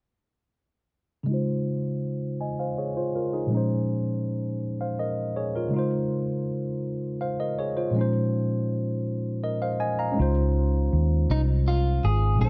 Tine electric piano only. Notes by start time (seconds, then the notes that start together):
1.23 C#3 G#3
1.29 D#4 F4
1.34 C5
2.41 D#5 G#5
2.59 C5 F5
2.78 G#4 C#5
2.97 F4 C5
3.16 F4 A#4
3.33 D#4 G#4
3.47 A#2 F3 G#3
3.53 C#4 D#4
3.57 C5
4.81 C5 F5
4.99 A#4 D#5
5.36 G#4 C#5
5.56 F4 A#4
5.68 C#3 G#3
5.74 D#4 F4
5.79 C5
7.21 C5 F5
7.40 A#4 D#5
7.59 G#4 C#5
7.77 F4 C5
7.90 A#2 F3 G#3
7.96 C#4 D#4
8.01 C5
9.44 A#4 D#5
9.62 C5 F5
9.80 D#5 G#5
9.99 F5 A#5
10.12 G#3 C#4
10.17 D#4 F4
10.22 C5
12.35 A#2 F3 G#3
12.41 C#4 D#4
12.45 C5